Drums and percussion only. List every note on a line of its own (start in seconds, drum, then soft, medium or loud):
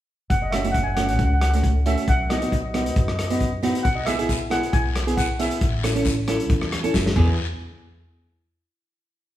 0.30 kick loud
0.30 closed hi-hat medium
0.52 cross-stick medium
0.52 closed hi-hat medium
0.65 closed hi-hat medium
0.74 kick medium
0.74 closed hi-hat medium
0.97 cross-stick medium
0.97 closed hi-hat medium
1.09 closed hi-hat medium
1.19 kick medium
1.19 closed hi-hat medium
1.41 cross-stick medium
1.41 closed hi-hat medium
1.54 closed hi-hat medium
1.64 kick medium
1.64 closed hi-hat medium
1.86 closed hi-hat medium
1.98 closed hi-hat medium
2.08 kick medium
2.08 closed hi-hat medium
2.30 cross-stick medium
2.30 closed hi-hat medium
2.42 closed hi-hat medium
2.52 kick medium
2.52 closed hi-hat medium
2.74 cross-stick medium
2.74 closed hi-hat medium
2.86 closed hi-hat soft
2.96 kick loud
2.96 closed hi-hat medium
3.08 cross-stick medium
3.19 cross-stick medium
3.19 closed hi-hat medium
3.30 closed hi-hat medium
3.40 kick medium
3.40 closed hi-hat medium
3.63 closed hi-hat medium
3.75 closed hi-hat medium
3.85 kick loud
3.85 closed hi-hat medium
3.85 long guiro medium
4.07 cross-stick medium
4.07 closed hi-hat medium
4.07 short guiro medium
4.19 closed hi-hat medium
4.29 kick medium
4.29 closed hi-hat medium
4.29 short guiro medium
4.51 cross-stick medium
4.51 closed hi-hat medium
4.63 closed hi-hat medium
4.73 kick medium
4.73 closed hi-hat medium
4.73 long guiro medium
4.96 cross-stick medium
4.96 closed hi-hat medium
5.08 closed hi-hat medium
5.17 kick medium
5.17 closed hi-hat medium
5.17 short guiro medium
5.40 closed hi-hat medium
5.40 short guiro medium
5.51 closed hi-hat medium
5.61 kick loud
5.61 closed hi-hat medium
5.61 long guiro medium
5.84 cross-stick medium
5.84 closed hi-hat medium
5.84 short guiro medium
5.96 closed hi-hat medium
6.05 kick medium
6.05 closed hi-hat medium
6.05 short guiro medium
6.28 cross-stick medium
6.28 closed hi-hat medium
6.40 closed hi-hat medium
6.50 kick loud
6.50 closed hi-hat medium
6.50 long guiro medium
6.62 cross-stick medium
6.72 cross-stick medium
6.72 closed hi-hat medium
6.84 closed hi-hat medium
6.94 kick medium
6.94 snare soft
6.94 short guiro medium
7.06 snare medium
7.16 kick medium
7.16 crash medium
7.16 long guiro medium